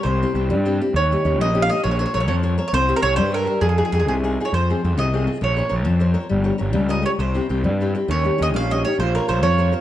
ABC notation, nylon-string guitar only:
X:1
M:6/8
L:1/8
Q:3/8=135
K:Fm
V:1 name="Nylon-string guitar"
C, [C=EG] [CEG] G, [CEG] [CEG] | E, [DEG] [DEG] B, [DEG] [DEG] | B, [Bcd] [Bcd] F, [Bcd] [Bcd] | C [Gc=e] [Gce] G, [Gce] [Gce] |
F, [EFA] [EFA] C, [EFA] [EFA] | F, [CFA] [CFA] C, [CFA] [CFA] | B, [Bcd] [Bcd] F, [Bcd] [Bcd] | G, [GBd] [GBd] G, [GBd] [GBd] |
C, [C=EG] [CEG] G, [CEG] [CEG] | E, [DEG] [DEG] B, [DEG] [DEG] | B, [Bcd] [Bcd] F, [Bcd] [Bcd] |]